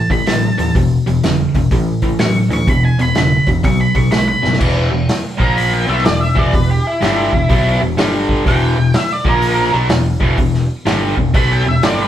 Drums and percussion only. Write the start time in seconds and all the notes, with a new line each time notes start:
0.10 kick, open hi-hat
0.27 snare, open hi-hat
0.59 open hi-hat
0.75 kick, open hi-hat
1.07 open hi-hat
1.24 snare, open hi-hat
1.54 kick, open hi-hat
1.71 kick, open hi-hat
2.02 kick, open hi-hat
2.19 snare, open hi-hat
2.51 open hi-hat
2.67 kick, open hi-hat
2.99 open hi-hat
3.15 snare, open hi-hat
3.47 kick, open hi-hat
3.64 kick, open hi-hat
3.95 kick, open hi-hat
4.12 snare, open hi-hat
4.45 snare
4.53 snare
4.60 kick, crash
5.09 snare, open hi-hat
5.40 kick
5.58 open hi-hat
5.98 snare
6.05 snare, open hi-hat
6.36 kick
6.53 kick, open hi-hat
7.02 snare, open hi-hat
7.33 kick
7.50 kick, open hi-hat
7.98 snare, open hi-hat
8.29 kick
8.46 kick, open hi-hat
8.94 snare, open hi-hat
9.25 kick
9.42 open hi-hat
9.89 snare, open hi-hat
10.21 kick
10.38 kick, open hi-hat
10.54 snare
10.86 snare, open hi-hat
11.17 kick
11.34 kick, open hi-hat
11.83 snare, open hi-hat